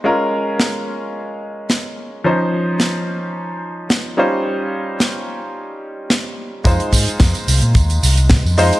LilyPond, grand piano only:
\new Staff \with { instrumentName = "Grand piano" } { \time 4/4 \key f \minor \tempo 4 = 109 <aes des' f' bes'>1 | <f des' ees' c''>2.~ <f des' ees' c''>8 <g des' ees' f' c''>8~ | <g des' ees' f' c''>1 | <aes ees' f' c''>2.~ <aes ees' f' c''>8 <aes ees' f' c''>8 | }